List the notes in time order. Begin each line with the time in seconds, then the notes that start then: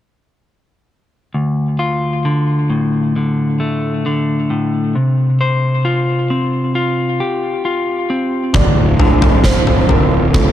1.34 D2
1.79 F4
2.25 D3
2.70 A2
3.16 D3
3.60 A3
4.06 D3
4.50 A2
4.95 C3
5.41 C5
5.85 F4
6.30 C4
6.75 F4
7.20 G4
7.65 F4
8.10 C4
8.54 D1 D2 D3 F3 F4 D5, kick, floor tom
8.99 D3, floor tom
9.22 floor tom
9.44 C5, kick, snare
9.67 floor tom
9.89 D3 A#4, floor tom
10.34 A2 A4, kick, floor tom